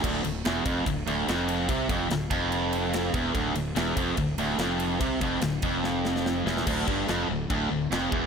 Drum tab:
CC |x---------------|----------------|----------------|----------------|
RD |--x-x-x-x-x-x-x-|x-x-x-x-x-x-x-x-|x-x-x-x-x-x-x-x-|x-x-x-x---------|
SD |----o-------o---|----o-------o---|----o-------o---|----o---o-ooo-oo|
BD |o-----o-o-------|o-o---o-------o-|o-----o-o-------|o-o---o---------|

CC |x---x---x---x---|
RD |----------------|
SD |----o-------o---|
BD |o-o-----o-----o-|